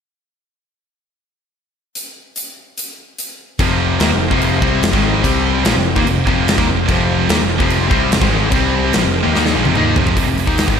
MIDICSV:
0, 0, Header, 1, 6, 480
1, 0, Start_track
1, 0, Key_signature, -4, "minor"
1, 0, Tempo, 410678
1, 2278, Time_signature, 4, 2, 24, 8
1, 12621, End_track
2, 0, Start_track
2, 0, Title_t, "Tonewheel organ"
2, 0, Program_c, 0, 16
2, 4193, Note_on_c, 0, 72, 63
2, 4201, Note_on_c, 0, 79, 75
2, 4204, Note_on_c, 0, 65, 66
2, 6103, Note_off_c, 0, 79, 0
2, 6105, Note_off_c, 0, 65, 0
2, 6144, Note_on_c, 0, 60, 65
2, 6146, Note_on_c, 0, 67, 66
2, 6609, Note_off_c, 0, 60, 0
2, 6609, Note_off_c, 0, 67, 0
2, 6612, Note_on_c, 0, 65, 70
2, 6622, Note_on_c, 0, 79, 73
2, 9932, Note_off_c, 0, 65, 0
2, 9937, Note_off_c, 0, 79, 0
2, 9981, Note_on_c, 0, 67, 65
2, 9990, Note_on_c, 0, 60, 70
2, 10445, Note_off_c, 0, 67, 0
2, 10450, Note_off_c, 0, 60, 0
2, 10472, Note_on_c, 0, 65, 67
2, 10487, Note_on_c, 0, 79, 76
2, 11828, Note_off_c, 0, 72, 0
2, 11879, Note_off_c, 0, 65, 0
2, 11887, Note_off_c, 0, 79, 0
2, 12621, End_track
3, 0, Start_track
3, 0, Title_t, "Overdriven electric guitar"
3, 0, Program_c, 1, 29
3, 4205, Note_on_c, 1, 41, 96
3, 4210, Note_on_c, 1, 53, 122
3, 4214, Note_on_c, 1, 48, 96
3, 4676, Note_off_c, 1, 41, 0
3, 4677, Note_off_c, 1, 48, 0
3, 4678, Note_off_c, 1, 53, 0
3, 4682, Note_on_c, 1, 51, 92
3, 4684, Note_on_c, 1, 58, 97
3, 4794, Note_off_c, 1, 51, 0
3, 4795, Note_off_c, 1, 58, 0
3, 4800, Note_on_c, 1, 41, 72
3, 4804, Note_on_c, 1, 48, 82
3, 4992, Note_off_c, 1, 41, 0
3, 4995, Note_off_c, 1, 48, 0
3, 5030, Note_on_c, 1, 41, 87
3, 5040, Note_on_c, 1, 48, 88
3, 5040, Note_on_c, 1, 53, 90
3, 5383, Note_off_c, 1, 48, 0
3, 5389, Note_off_c, 1, 41, 0
3, 5394, Note_off_c, 1, 53, 0
3, 5397, Note_on_c, 1, 48, 94
3, 5408, Note_on_c, 1, 55, 88
3, 5414, Note_on_c, 1, 60, 105
3, 5632, Note_off_c, 1, 48, 0
3, 5638, Note_off_c, 1, 55, 0
3, 5640, Note_off_c, 1, 60, 0
3, 5646, Note_on_c, 1, 41, 60
3, 5649, Note_on_c, 1, 48, 75
3, 5742, Note_off_c, 1, 41, 0
3, 5747, Note_on_c, 1, 44, 102
3, 5750, Note_off_c, 1, 48, 0
3, 5755, Note_on_c, 1, 51, 101
3, 5758, Note_on_c, 1, 56, 101
3, 6107, Note_off_c, 1, 44, 0
3, 6109, Note_off_c, 1, 51, 0
3, 6113, Note_off_c, 1, 56, 0
3, 6114, Note_on_c, 1, 48, 91
3, 6123, Note_on_c, 1, 60, 115
3, 6125, Note_on_c, 1, 55, 108
3, 6591, Note_off_c, 1, 48, 0
3, 6593, Note_off_c, 1, 55, 0
3, 6595, Note_on_c, 1, 46, 88
3, 6596, Note_off_c, 1, 60, 0
3, 6598, Note_on_c, 1, 53, 87
3, 6712, Note_off_c, 1, 46, 0
3, 6713, Note_off_c, 1, 53, 0
3, 6717, Note_on_c, 1, 41, 64
3, 6726, Note_on_c, 1, 48, 84
3, 6912, Note_off_c, 1, 41, 0
3, 6916, Note_off_c, 1, 48, 0
3, 6960, Note_on_c, 1, 51, 91
3, 6974, Note_on_c, 1, 58, 98
3, 7070, Note_on_c, 1, 41, 65
3, 7074, Note_off_c, 1, 51, 0
3, 7079, Note_on_c, 1, 48, 68
3, 7081, Note_off_c, 1, 58, 0
3, 7268, Note_off_c, 1, 41, 0
3, 7273, Note_off_c, 1, 48, 0
3, 7327, Note_on_c, 1, 41, 95
3, 7332, Note_on_c, 1, 48, 98
3, 7343, Note_on_c, 1, 53, 110
3, 7665, Note_off_c, 1, 48, 0
3, 7670, Note_on_c, 1, 51, 93
3, 7677, Note_off_c, 1, 53, 0
3, 7678, Note_off_c, 1, 41, 0
3, 7681, Note_on_c, 1, 58, 90
3, 7789, Note_off_c, 1, 51, 0
3, 7795, Note_off_c, 1, 58, 0
3, 7798, Note_on_c, 1, 41, 69
3, 7809, Note_on_c, 1, 48, 83
3, 7992, Note_off_c, 1, 41, 0
3, 7998, Note_off_c, 1, 48, 0
3, 8041, Note_on_c, 1, 41, 101
3, 8046, Note_on_c, 1, 48, 106
3, 8055, Note_on_c, 1, 53, 124
3, 8514, Note_off_c, 1, 41, 0
3, 8517, Note_off_c, 1, 48, 0
3, 8521, Note_off_c, 1, 53, 0
3, 8524, Note_on_c, 1, 51, 90
3, 8532, Note_on_c, 1, 58, 114
3, 8634, Note_off_c, 1, 51, 0
3, 8636, Note_on_c, 1, 41, 77
3, 8639, Note_on_c, 1, 48, 85
3, 8640, Note_off_c, 1, 58, 0
3, 8831, Note_off_c, 1, 41, 0
3, 8832, Note_off_c, 1, 48, 0
3, 8860, Note_on_c, 1, 41, 86
3, 8875, Note_on_c, 1, 48, 91
3, 8876, Note_on_c, 1, 53, 101
3, 9206, Note_off_c, 1, 48, 0
3, 9220, Note_off_c, 1, 53, 0
3, 9220, Note_on_c, 1, 48, 96
3, 9223, Note_off_c, 1, 41, 0
3, 9225, Note_on_c, 1, 55, 93
3, 9231, Note_on_c, 1, 60, 100
3, 9463, Note_off_c, 1, 48, 0
3, 9466, Note_off_c, 1, 55, 0
3, 9469, Note_off_c, 1, 60, 0
3, 9485, Note_on_c, 1, 41, 59
3, 9491, Note_on_c, 1, 48, 71
3, 9587, Note_off_c, 1, 41, 0
3, 9591, Note_on_c, 1, 44, 90
3, 9594, Note_off_c, 1, 48, 0
3, 9599, Note_on_c, 1, 51, 95
3, 9607, Note_on_c, 1, 56, 114
3, 9933, Note_off_c, 1, 51, 0
3, 9937, Note_off_c, 1, 56, 0
3, 9938, Note_on_c, 1, 48, 95
3, 9941, Note_on_c, 1, 55, 102
3, 9948, Note_off_c, 1, 44, 0
3, 9951, Note_on_c, 1, 60, 121
3, 10421, Note_off_c, 1, 48, 0
3, 10423, Note_off_c, 1, 55, 0
3, 10428, Note_off_c, 1, 60, 0
3, 10434, Note_on_c, 1, 46, 87
3, 10442, Note_on_c, 1, 53, 97
3, 10549, Note_off_c, 1, 46, 0
3, 10550, Note_on_c, 1, 41, 75
3, 10554, Note_off_c, 1, 53, 0
3, 10558, Note_on_c, 1, 48, 80
3, 10746, Note_off_c, 1, 41, 0
3, 10750, Note_off_c, 1, 48, 0
3, 10784, Note_on_c, 1, 51, 84
3, 10789, Note_on_c, 1, 58, 96
3, 10904, Note_off_c, 1, 51, 0
3, 10907, Note_off_c, 1, 58, 0
3, 10929, Note_on_c, 1, 58, 93
3, 10931, Note_on_c, 1, 51, 93
3, 10933, Note_on_c, 1, 63, 113
3, 11150, Note_off_c, 1, 51, 0
3, 11155, Note_on_c, 1, 46, 94
3, 11157, Note_off_c, 1, 58, 0
3, 11158, Note_off_c, 1, 63, 0
3, 11164, Note_on_c, 1, 53, 106
3, 11269, Note_off_c, 1, 46, 0
3, 11274, Note_off_c, 1, 53, 0
3, 11289, Note_on_c, 1, 41, 81
3, 11296, Note_on_c, 1, 48, 102
3, 11397, Note_off_c, 1, 41, 0
3, 11400, Note_off_c, 1, 48, 0
3, 11414, Note_on_c, 1, 51, 100
3, 11419, Note_on_c, 1, 58, 94
3, 11422, Note_on_c, 1, 63, 96
3, 11638, Note_off_c, 1, 51, 0
3, 11641, Note_off_c, 1, 58, 0
3, 11641, Note_on_c, 1, 41, 108
3, 11643, Note_off_c, 1, 63, 0
3, 11649, Note_on_c, 1, 48, 94
3, 11661, Note_on_c, 1, 53, 115
3, 11864, Note_off_c, 1, 41, 0
3, 11876, Note_off_c, 1, 48, 0
3, 11878, Note_on_c, 1, 41, 106
3, 11882, Note_off_c, 1, 53, 0
3, 11888, Note_on_c, 1, 48, 102
3, 11973, Note_off_c, 1, 41, 0
3, 11986, Note_off_c, 1, 48, 0
3, 11987, Note_on_c, 1, 41, 58
3, 12000, Note_on_c, 1, 48, 69
3, 12089, Note_off_c, 1, 41, 0
3, 12097, Note_off_c, 1, 48, 0
3, 12103, Note_on_c, 1, 41, 61
3, 12111, Note_on_c, 1, 48, 59
3, 12221, Note_off_c, 1, 48, 0
3, 12226, Note_on_c, 1, 51, 78
3, 12230, Note_off_c, 1, 41, 0
3, 12233, Note_on_c, 1, 63, 94
3, 12234, Note_on_c, 1, 58, 80
3, 12464, Note_off_c, 1, 51, 0
3, 12467, Note_off_c, 1, 63, 0
3, 12468, Note_off_c, 1, 58, 0
3, 12468, Note_on_c, 1, 44, 94
3, 12478, Note_on_c, 1, 51, 107
3, 12585, Note_off_c, 1, 44, 0
3, 12587, Note_off_c, 1, 51, 0
3, 12621, End_track
4, 0, Start_track
4, 0, Title_t, "Distorted electric guitar"
4, 0, Program_c, 2, 30
4, 12152, Note_on_c, 2, 41, 70
4, 12255, Note_off_c, 2, 41, 0
4, 12621, End_track
5, 0, Start_track
5, 0, Title_t, "Picked electric bass"
5, 0, Program_c, 3, 34
5, 4199, Note_on_c, 3, 29, 85
5, 4646, Note_off_c, 3, 29, 0
5, 4681, Note_on_c, 3, 39, 93
5, 4792, Note_off_c, 3, 39, 0
5, 4799, Note_on_c, 3, 29, 78
5, 5023, Note_off_c, 3, 29, 0
5, 5036, Note_on_c, 3, 29, 96
5, 5373, Note_off_c, 3, 29, 0
5, 5401, Note_on_c, 3, 36, 91
5, 5625, Note_off_c, 3, 36, 0
5, 5637, Note_on_c, 3, 29, 83
5, 5751, Note_off_c, 3, 29, 0
5, 5768, Note_on_c, 3, 32, 84
5, 6100, Note_off_c, 3, 32, 0
5, 6124, Note_on_c, 3, 36, 85
5, 6570, Note_off_c, 3, 36, 0
5, 6599, Note_on_c, 3, 34, 92
5, 6712, Note_off_c, 3, 34, 0
5, 6731, Note_on_c, 3, 29, 79
5, 6950, Note_off_c, 3, 29, 0
5, 6967, Note_on_c, 3, 39, 104
5, 7076, Note_off_c, 3, 39, 0
5, 7094, Note_on_c, 3, 29, 77
5, 7312, Note_off_c, 3, 29, 0
5, 7325, Note_on_c, 3, 29, 97
5, 7659, Note_off_c, 3, 29, 0
5, 7692, Note_on_c, 3, 39, 92
5, 7799, Note_off_c, 3, 39, 0
5, 7813, Note_on_c, 3, 29, 83
5, 8031, Note_off_c, 3, 29, 0
5, 8051, Note_on_c, 3, 29, 89
5, 8493, Note_off_c, 3, 29, 0
5, 8532, Note_on_c, 3, 39, 99
5, 8639, Note_off_c, 3, 39, 0
5, 8658, Note_on_c, 3, 29, 81
5, 8873, Note_off_c, 3, 29, 0
5, 8889, Note_on_c, 3, 29, 101
5, 9220, Note_off_c, 3, 29, 0
5, 9248, Note_on_c, 3, 36, 107
5, 9468, Note_off_c, 3, 36, 0
5, 9505, Note_on_c, 3, 29, 84
5, 9595, Note_off_c, 3, 29, 0
5, 9602, Note_on_c, 3, 32, 81
5, 9936, Note_off_c, 3, 32, 0
5, 9965, Note_on_c, 3, 36, 97
5, 10409, Note_off_c, 3, 36, 0
5, 10453, Note_on_c, 3, 34, 96
5, 10558, Note_off_c, 3, 34, 0
5, 10570, Note_on_c, 3, 29, 84
5, 10788, Note_off_c, 3, 29, 0
5, 10819, Note_on_c, 3, 39, 96
5, 10921, Note_off_c, 3, 39, 0
5, 10946, Note_on_c, 3, 39, 94
5, 11156, Note_off_c, 3, 39, 0
5, 11171, Note_on_c, 3, 34, 85
5, 11276, Note_off_c, 3, 34, 0
5, 11297, Note_on_c, 3, 29, 94
5, 11400, Note_off_c, 3, 29, 0
5, 11423, Note_on_c, 3, 39, 92
5, 11634, Note_off_c, 3, 39, 0
5, 11651, Note_on_c, 3, 29, 87
5, 11868, Note_off_c, 3, 29, 0
5, 11879, Note_on_c, 3, 29, 88
5, 11990, Note_off_c, 3, 29, 0
5, 12005, Note_on_c, 3, 29, 80
5, 12113, Note_off_c, 3, 29, 0
5, 12138, Note_on_c, 3, 29, 73
5, 12240, Note_off_c, 3, 29, 0
5, 12250, Note_on_c, 3, 39, 95
5, 12467, Note_off_c, 3, 39, 0
5, 12483, Note_on_c, 3, 32, 87
5, 12591, Note_off_c, 3, 32, 0
5, 12621, End_track
6, 0, Start_track
6, 0, Title_t, "Drums"
6, 2283, Note_on_c, 9, 42, 55
6, 2400, Note_off_c, 9, 42, 0
6, 2757, Note_on_c, 9, 42, 61
6, 2874, Note_off_c, 9, 42, 0
6, 3244, Note_on_c, 9, 42, 60
6, 3361, Note_off_c, 9, 42, 0
6, 3722, Note_on_c, 9, 42, 56
6, 3839, Note_off_c, 9, 42, 0
6, 4197, Note_on_c, 9, 49, 59
6, 4198, Note_on_c, 9, 36, 102
6, 4313, Note_off_c, 9, 49, 0
6, 4315, Note_off_c, 9, 36, 0
6, 4674, Note_on_c, 9, 49, 62
6, 4686, Note_on_c, 9, 38, 109
6, 4790, Note_off_c, 9, 49, 0
6, 4803, Note_off_c, 9, 38, 0
6, 5038, Note_on_c, 9, 36, 91
6, 5155, Note_off_c, 9, 36, 0
6, 5160, Note_on_c, 9, 49, 61
6, 5277, Note_off_c, 9, 49, 0
6, 5401, Note_on_c, 9, 36, 107
6, 5518, Note_off_c, 9, 36, 0
6, 5642, Note_on_c, 9, 49, 65
6, 5654, Note_on_c, 9, 38, 111
6, 5758, Note_off_c, 9, 49, 0
6, 5765, Note_on_c, 9, 36, 108
6, 5771, Note_off_c, 9, 38, 0
6, 5882, Note_off_c, 9, 36, 0
6, 6126, Note_on_c, 9, 36, 99
6, 6131, Note_on_c, 9, 49, 65
6, 6243, Note_off_c, 9, 36, 0
6, 6248, Note_off_c, 9, 49, 0
6, 6602, Note_on_c, 9, 49, 65
6, 6614, Note_on_c, 9, 38, 115
6, 6718, Note_off_c, 9, 49, 0
6, 6731, Note_off_c, 9, 38, 0
6, 6969, Note_on_c, 9, 36, 108
6, 7086, Note_off_c, 9, 36, 0
6, 7091, Note_on_c, 9, 49, 61
6, 7208, Note_off_c, 9, 49, 0
6, 7328, Note_on_c, 9, 36, 104
6, 7444, Note_off_c, 9, 36, 0
6, 7572, Note_on_c, 9, 49, 60
6, 7585, Note_on_c, 9, 38, 109
6, 7689, Note_off_c, 9, 49, 0
6, 7692, Note_on_c, 9, 36, 104
6, 7702, Note_off_c, 9, 38, 0
6, 7809, Note_off_c, 9, 36, 0
6, 8049, Note_on_c, 9, 36, 113
6, 8051, Note_on_c, 9, 49, 57
6, 8166, Note_off_c, 9, 36, 0
6, 8168, Note_off_c, 9, 49, 0
6, 8523, Note_on_c, 9, 49, 66
6, 8536, Note_on_c, 9, 38, 115
6, 8640, Note_off_c, 9, 49, 0
6, 8652, Note_off_c, 9, 38, 0
6, 8885, Note_on_c, 9, 36, 100
6, 9002, Note_off_c, 9, 36, 0
6, 9002, Note_on_c, 9, 49, 59
6, 9119, Note_off_c, 9, 49, 0
6, 9245, Note_on_c, 9, 36, 103
6, 9362, Note_off_c, 9, 36, 0
6, 9488, Note_on_c, 9, 49, 67
6, 9501, Note_on_c, 9, 38, 103
6, 9602, Note_on_c, 9, 36, 118
6, 9605, Note_off_c, 9, 49, 0
6, 9618, Note_off_c, 9, 38, 0
6, 9719, Note_off_c, 9, 36, 0
6, 9952, Note_on_c, 9, 49, 67
6, 9958, Note_on_c, 9, 36, 110
6, 10069, Note_off_c, 9, 49, 0
6, 10075, Note_off_c, 9, 36, 0
6, 10438, Note_on_c, 9, 49, 63
6, 10451, Note_on_c, 9, 38, 108
6, 10555, Note_off_c, 9, 49, 0
6, 10568, Note_off_c, 9, 38, 0
6, 10933, Note_on_c, 9, 38, 64
6, 11049, Note_off_c, 9, 38, 0
6, 11052, Note_on_c, 9, 38, 62
6, 11169, Note_off_c, 9, 38, 0
6, 11282, Note_on_c, 9, 48, 76
6, 11399, Note_off_c, 9, 48, 0
6, 11402, Note_on_c, 9, 47, 90
6, 11518, Note_off_c, 9, 47, 0
6, 11643, Note_on_c, 9, 43, 95
6, 11760, Note_off_c, 9, 43, 0
6, 11767, Note_on_c, 9, 43, 89
6, 11884, Note_off_c, 9, 43, 0
6, 11884, Note_on_c, 9, 36, 103
6, 11885, Note_on_c, 9, 46, 69
6, 12000, Note_off_c, 9, 36, 0
6, 12002, Note_off_c, 9, 46, 0
6, 12128, Note_on_c, 9, 46, 52
6, 12242, Note_on_c, 9, 36, 95
6, 12245, Note_off_c, 9, 46, 0
6, 12359, Note_off_c, 9, 36, 0
6, 12364, Note_on_c, 9, 46, 74
6, 12377, Note_on_c, 9, 38, 97
6, 12481, Note_off_c, 9, 46, 0
6, 12482, Note_on_c, 9, 36, 109
6, 12494, Note_off_c, 9, 38, 0
6, 12599, Note_off_c, 9, 36, 0
6, 12621, End_track
0, 0, End_of_file